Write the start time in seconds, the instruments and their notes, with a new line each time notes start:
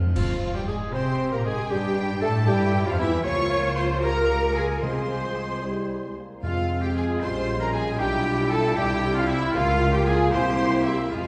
Already playing: viola section F3 G#3, violin section C4 F4
0.01 timpani F2
0.14 timpani F2, double bass section F2, french horn section F3, bassoon F3, oboe F4, violin section F4 F5, clarinet F4, viola section F4, trumpet section F4, flute section F5, concert bass drum, crash
0.54 double bass section G2, bassoon G3, french horn section G3, oboe G4, viola section G4, trumpet section G4, clarinet G4, violin section G4 G5, flute section G5
0.67 double bass section G#2, french horn section G#3, bassoon G#3, clarinet G#4, viola section G#4, trumpet section G#4, oboe G#4, violin section G#4 G#5, flute section G#5
0.92 double bass section C3, french horn section C4, bassoon C4, cello section G4, viola section C5, oboe C5, trumpet section C5, clarinet C5, violin section C5 C6, flute section C6
1.31 double bass section A#2, bassoon A#3, french horn section A#3, viola section A#4, trumpet section A#4, oboe A#4, clarinet A#4, violin section A#4 A#5, flute section A#5
1.44 double bass section G#2, french horn section G#3, bassoon G#3, oboe G#4, viola section G#4, violin section G#4 G#5, clarinet G#4, trumpet section G#4, flute section G#5
1.70 double bass section G2, french horn section G3, bassoon G3, cello section D4, oboe G4, clarinet G4, violin section G4 G5, viola section G4, trumpet section G4, flute section G5
2.21 double bass section A2, french horn section A3, bassoon A3, oboe A4, violin section A4 A5, clarinet A4, viola section A4, trumpet section A4, flute section A5
2.46 double bass section G2, french horn section G3, bassoon G3, cello section E4, violin section G4 G5, oboe G4, trumpet section G4, viola section G4, clarinet G4, flute section G5
2.85 double bass section F2, french horn section F3, bassoon F3, trumpet section F4, viola section F4, oboe F4, violin section F4 F5, clarinet F4, flute section F5
2.97 double bass section E2, french horn section E3, bassoon E3, violin section E4 E5, trumpet section E4, viola section E4, oboe E4, clarinet E4, flute section E5
3.23 double bass section C#2, bassoon F3, french horn section A#3 F4, cello section F4, clarinet F4, oboe C#5, violin section C#5 C#6, trumpet section C#5, viola section C#5, flute section C#6
3.76 violin section C5 C6, trumpet section C5, viola section C5, oboe C5, flute section C6
4.02 french horn section G#3, bassoon A#3, clarinet G4, oboe A#4, violin section A#4 A#5, cello section A#4, trumpet section A#4, viola section A#4, flute section A#5
4.54 violin section G#4 G#5, oboe G#4, viola section G#4, trumpet section G#4, flute section G#5
4.82 double bass section C2, timpani C3, bassoon G#3, clarinet F4, cello section G#4, oboe C5, violin section C5 C6, viola section C5, trumpet section C5, flute section C6
5.63 french horn section G3, bassoon G3, clarinet E4
6.05 french horn section G#3
6.18 french horn section A#3
6.42 double bass section F2, timpani F2, french horn section G#3 C4, bassoon G#3, clarinet C4, oboe F4, cello section F4, violin section F4 F5, trumpet section F4, viola section F4, flute section F5
6.81 oboe G4, trumpet section G4, viola section G4, violin section G4 G5, flute section G5
6.94 oboe G#4, violin section G#4 G#5, trumpet section G#4, viola section G#4, flute section G#5
7.20 double bass section A#1, french horn section G3 C#4, clarinet C#4, oboe C5, violin section C5 C6, trumpet section C5, viola section C5, flute section C6
7.59 oboe A#4, violin section A#4 A#5, trumpet section A#4, viola section A#4, flute section A#5
7.72 oboe G#4, violin section G#4 G#5, viola section G#4, trumpet section G#4, flute section G#5
7.98 double bass section B1, bassoon G3, clarinet D4, cello section E4, french horn section F4, oboe G4, violin section G4 G5, trumpet section G4, viola section G4, flute section G5
8.49 oboe A4, violin section A4 A5, trumpet section A4, viola section A4, flute section A5
8.75 double bass section C2, bassoon G3, clarinet E4, french horn section E4, oboe G4, violin section G4 G5, trumpet section G4, viola section G4, flute section G5
9.14 oboe F4, violin section F4 F5, trumpet section F4, viola section F4, flute section F5
9.27 oboe E4, violin section E4 E5, trumpet section E4, viola section E4, flute section E5
9.52 double bass section C#2, bassoon A#3, french horn section A#3 F4, oboe F4, violin section F4 F5, clarinet F4, viola section F4, cello section F4, trumpet section F4, flute section F5
9.91 oboe G4, violin section G4 G5, trumpet section G4, viola section G4, flute section G5
10.05 oboe G#4, violin section G#4 G#5, trumpet section G#4, viola section G#4, flute section G#5
10.30 double bass section C2, french horn section E4, clarinet E4, cello section G4, oboe C5, violin section C5 C6, trumpet section C5, flute section C6
10.34 viola section C5
10.83 oboe E4, violin section E4 E5, trumpet section E4, viola section E4, flute section E5
11.10 double bass section F2, timpani F2, bassoon G#3, french horn section G#3 F4, oboe F4, violin section F4 F5, clarinet F4, trumpet section F4, viola section F4, cello section G#4, flute section F5
11.21 timpani F2